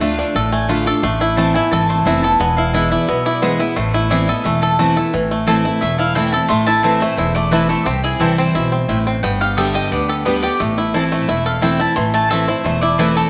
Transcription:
Already playing: upright bass D2, five-string banjo A4
0.00 steel-string acoustic guitar D3 A3 D4 F4, five-string banjo A3
0.19 five-string banjo D4
0.35 upright bass A1, steel-string acoustic guitar A2, five-string banjo A4
0.52 five-string banjo A3, mandolin G#5
0.68 steel-string acoustic guitar D3 A3 D4 F4, five-string banjo F4, mandolin B5
0.86 steel-string acoustic guitar D4 F4, five-string banjo A4, mandolin D6
1.02 upright bass A1, steel-string acoustic guitar A2, five-string banjo A3, mandolin C6
1.20 five-string banjo E4, mandolin B5
1.37 steel-string acoustic guitar E3 B3 C4 E4, five-string banjo A3, mandolin A5
1.54 steel-string acoustic guitar B3 E4, five-string banjo E4, mandolin G#5
1.71 upright bass G#1, steel-string acoustic guitar E3, five-string banjo A4, mandolin A5
1.89 five-string banjo A3, mandolin C5
2.05 upright bass F1, steel-string acoustic guitar E3 B3 C4 E4, five-string banjo E4, mandolin E5
2.22 steel-string acoustic guitar B3 E4, five-string banjo A4, mandolin A5
2.40 upright bass E1, steel-string acoustic guitar E2, five-string banjo B3, mandolin G#5
2.57 five-string banjo E4, mandolin F5
2.73 steel-string acoustic guitar E3 G#3 B3 E4, five-string banjo E4, mandolin E5
2.91 steel-string acoustic guitar B3 E4, five-string banjo E4, mandolin D5
3.08 upright bass B1, steel-string acoustic guitar B2, five-string banjo B3, mandolin E5
3.25 five-string banjo E4, mandolin D5
3.42 steel-string acoustic guitar E3 G#3 B3 E4, five-string banjo B3, mandolin C5
3.59 steel-string acoustic guitar B3 E4, five-string banjo E4, mandolin B4
3.76 upright bass A1, steel-string acoustic guitar A2, five-string banjo A3, mandolin C5
3.93 five-string banjo E4, mandolin B4
4.10 steel-string acoustic guitar E3 B3 C4 E4, five-string banjo E4, mandolin D5
4.27 steel-string acoustic guitar B3 E4, five-string banjo A4, mandolin D#5
4.44 upright bass E1, steel-string acoustic guitar E3, five-string banjo A3, mandolin E5
4.62 five-string banjo A4, mandolin A5
4.79 steel-string acoustic guitar E3 B3 C4 E4, five-string banjo A3
4.96 steel-string acoustic guitar B3 E4, five-string banjo A4
5.13 upright bass A1, steel-string acoustic guitar A2, five-string banjo E3
5.31 five-string banjo A3
5.47 steel-string acoustic guitar E3 A3 C4 E4, mandolin C4 E4 C5 A5, five-string banjo A4
5.65 steel-string acoustic guitar C4 E4, five-string banjo E4
5.81 upright bass E1, steel-string acoustic guitar E2, five-string banjo A3, mandolin E5
5.98 five-string banjo E4, mandolin F5
6.15 steel-string acoustic guitar E3 A3 C4 E4, mandolin C4 E4 C5 G5 A5, five-string banjo E4
6.32 steel-string acoustic guitar C4 E4, five-string banjo A4, mandolin A5
6.49 upright bass A1, steel-string acoustic guitar A2, five-string banjo A3, mandolin C6
6.66 five-string banjo E4, mandolin A5
6.83 steel-string acoustic guitar E3 A3 C4 E4, five-string banjo E3, mandolin C4 E4 C5 E5 A5
7.00 five-string banjo A3, steel-string acoustic guitar C4 E4, mandolin C5
7.17 upright bass E1, steel-string acoustic guitar E2, five-string banjo E4, mandolin C5
7.35 five-string banjo A3, mandolin D5
7.51 steel-string acoustic guitar E3 A3 C4 E4, mandolin C4 E4 B4 C5 A5, five-string banjo E4
7.69 five-string banjo A3, steel-string acoustic guitar C4 E4, mandolin A4
7.86 upright bass C2, steel-string acoustic guitar C3, five-string banjo C4, mandolin G4
8.04 five-string banjo E4, mandolin G#4
8.20 upright bass C2, steel-string acoustic guitar E3 G3 C4 E4, five-string banjo E3, mandolin C4 E4 A4 C5 G5
8.38 five-string banjo C4, mandolin C5
8.55 upright bass B1, steel-string acoustic guitar B2, five-string banjo E4
8.72 five-string banjo C4
8.88 upright bass A1, steel-string acoustic guitar A2, mandolin C4 E4 C5 G5, five-string banjo E4
9.07 five-string banjo C4
9.23 upright bass G1, steel-string acoustic guitar G2, five-string banjo B3, mandolin G5
9.41 five-string banjo G4, mandolin F5
9.57 steel-string acoustic guitar D3 G3 B3 G4, mandolin B3 G4 D5 E5 G5, five-string banjo A4
9.74 five-string banjo G4, mandolin D#5
9.92 upright bass D2, steel-string acoustic guitar D3, five-string banjo B3, mandolin D5
10.08 mandolin G4, five-string banjo A4
10.25 steel-string acoustic guitar D3 G3 B3 G4, mandolin B3 G4 B4 D5 G5, five-string banjo B3
10.43 steel-string acoustic guitar B3 G4, five-string banjo G4, mandolin D5
10.60 upright bass A1, steel-string acoustic guitar A2, five-string banjo A3
10.78 five-string banjo E4
10.94 steel-string acoustic guitar E3 A3 C4 E4, mandolin C4 E4 C5 A5, five-string banjo E4
11.12 five-string banjo A3
11.28 upright bass E1, steel-string acoustic guitar E2, five-string banjo E4, mandolin E5
11.46 five-string banjo A4, mandolin F5
11.61 steel-string acoustic guitar E3 A3 C4 E4, mandolin C4 E4 C5 G5 A5, five-string banjo E4
11.79 steel-string acoustic guitar C4 E4, five-string banjo E4, mandolin A5
11.96 upright bass A1, steel-string acoustic guitar A2, five-string banjo E3, mandolin C6
12.14 five-string banjo A3, mandolin A5
12.29 steel-string acoustic guitar E3 A3 C4 E4, mandolin C4 E4 C5 E5 A5, five-string banjo A4
12.48 steel-string acoustic guitar C4 E4, five-string banjo E4, mandolin C5
12.64 upright bass E1, steel-string acoustic guitar E2, five-string banjo A3, mandolin C5
12.81 five-string banjo E4, mandolin D5
12.98 steel-string acoustic guitar E3 A3 C4 E4, mandolin C4 E4 B4 C5 A5, five-string banjo E4
13.17 five-string banjo A4, mandolin A4

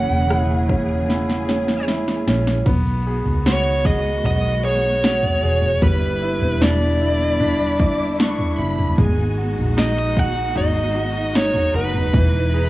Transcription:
Already playing: grand piano C#3 C#4 E4, string section E3 A#3 C#4 G#4, lead electric guitar F#5
0.10 fingered electric bass E1
0.30 grand piano E4, cross-stick
0.69 grand piano C#4, kick, floor tom
1.09 grand piano E4, snare
1.30 snare
1.48 grand piano C#4, snare
1.68 snare
1.88 grand piano E4, snare
2.08 snare
2.27 fingered electric bass A#1, grand piano C#4, snare
2.47 snare
2.66 fingered electric bass B1, string section D#3 G#3 B3 F#4, grand piano B3, kick, floor tom, crash, shaker
2.86 shaker
3.07 grand piano G#4
3.25 fingered electric bass C#2, floor tom, shaker
3.46 grand piano F#4, lead electric guitar C#5, snare, shaker
3.66 shaker
3.85 grand piano G#4, lead electric guitar D#5, kick, shaker
4.05 shaker
4.24 fingered electric bass B1, grand piano F#4, lead electric guitar D#5, floor tom, shaker
4.44 shaker
4.64 grand piano G#4, lead electric guitar C#5, shaker
4.84 shaker
5.03 grand piano F#4, snare, shaker
5.23 floor tom, shaker
5.43 fingered electric bass E1, grand piano G#4
5.62 floor tom, shaker
5.82 fingered electric bass G1, string section D3 G3 E4, grand piano G3, lead electric guitar B4, kick, floor tom, shaker
6.02 shaker
6.22 grand piano E4
6.42 fingered electric bass E1, floor tom, shaker
6.61 grand piano D4, lead electric guitar D5, snare, shaker
6.82 shaker
7.01 grand piano E4, shaker
7.21 shaker
7.40 grand piano D4, violin section B5, floor tom, shaker
7.60 shaker
7.80 grand piano E4, violin section D6, kick, shaker
8.00 shaker
8.19 grand piano D4, violin section C#6, snare, shaker
8.39 floor tom, shaker
8.58 fingered electric bass F#1, grand piano E4, violin section B5
8.78 floor tom, shaker
8.98 fingered electric bass G#1, grand piano G#3, string section G#3 D#4 F#4, violin section G#5, kick, floor tom, shaker
9.18 shaker
9.38 grand piano F#4
9.58 fingered electric bass A#1, floor tom, shaker
9.77 grand piano D#4, lead electric guitar D#5, snare, shaker
9.97 lead electric guitar D#5, shaker
10.16 grand piano F#4, lead electric guitar F#5, kick, shaker
10.36 shaker
10.55 fingered electric bass G#1, grand piano D#4, lead electric guitar D#5, floor tom, shaker
10.76 shaker
10.95 grand piano F#4, shaker
11.16 shaker
11.35 grand piano D#4, lead electric guitar C#5, snare, shaker
11.54 floor tom, shaker
11.75 fingered electric bass F#1, grand piano F#4, lead electric guitar B4
11.94 floor tom, shaker
12.13 fingered electric bass E1, grand piano E3, string section E4, kick, floor tom, shaker
12.34 shaker
12.53 grand piano G#4, violin section A#5

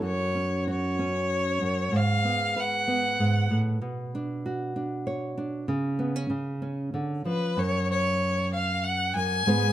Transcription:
Already playing: nylon-string guitar F#3
0.02 nylon-string guitar F#2, violin C#5
0.35 nylon-string guitar C#4
0.67 nylon-string guitar F#4, violin C#5
0.99 nylon-string guitar C#4
1.61 nylon-string guitar F#2
1.92 nylon-string guitar G#2
1.96 violin F5
2.25 nylon-string guitar B3
2.56 nylon-string guitar B4, violin F#5
2.88 nylon-string guitar B3
3.19 nylon-string guitar G#2
3.50 nylon-string guitar A2
3.81 nylon-string guitar B2
4.15 nylon-string guitar D4
4.46 nylon-string guitar F#4
4.76 nylon-string guitar D4
5.07 nylon-string guitar C#5
5.38 nylon-string guitar D4
5.68 nylon-string guitar C#3
5.99 nylon-string guitar B3
6.16 nylon-string guitar C#4
6.30 nylon-string guitar C#3
6.62 nylon-string guitar C#4
6.94 nylon-string guitar D3
7.25 nylon-string guitar F3, violin B4
7.57 nylon-string guitar F#2, violin C#5
7.91 violin C#5
8.54 violin F5
8.84 violin F#5
9.15 nylon-string guitar F#2, violin G#5
9.46 nylon-string guitar G#2 G#3 B3 G#4 B4

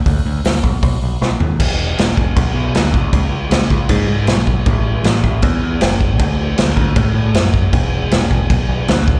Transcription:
0.06 picked electric bass D2, kick, open hi-hat
0.26 picked electric bass D2
0.45 picked electric bass D2, snare, open hi-hat
0.63 picked electric bass B1, kick
0.82 picked electric bass B1, kick, open hi-hat
1.03 picked electric bass B1
1.22 picked electric bass B1, snare
1.40 picked electric bass D#2, floor tom
1.59 picked electric bass E1, kick, crash
1.98 picked electric bass E1, snare, crash
2.17 picked electric bass E1, kick
2.36 picked electric bass B1, kick, crash
2.55 picked electric bass B1
2.75 picked electric bass D2, snare, crash
2.94 picked electric bass C#2, kick
3.13 picked electric bass C#2, kick, crash
3.51 picked electric bass C#2, snare, crash
3.70 picked electric bass C#2, kick
3.89 picked electric bass G#2, kick, crash
4.08 picked electric bass G#2
4.27 picked electric bass B1, snare, crash
4.47 kick
4.66 picked electric bass A1, kick, crash
5.04 picked electric bass A1, snare, crash
5.24 picked electric bass A1, kick
5.42 picked electric bass E2, kick, crash
5.63 picked electric bass E2
5.81 picked electric bass F#1, snare, crash
6.01 kick
6.19 picked electric bass D2, kick, crash
6.58 picked electric bass D2, snare, crash
6.76 picked electric bass D2, kick
6.96 picked electric bass A2, kick, crash
7.14 picked electric bass A2
7.34 picked electric bass F#2, snare, crash
7.54 kick
7.73 picked electric bass E1, kick, crash
8.11 picked electric bass E1, snare, crash
8.30 picked electric bass E1, kick
8.50 picked electric bass B1, kick, crash
8.69 picked electric bass B1
8.88 picked electric bass D2, snare, crash
9.07 picked electric bass C#2, kick

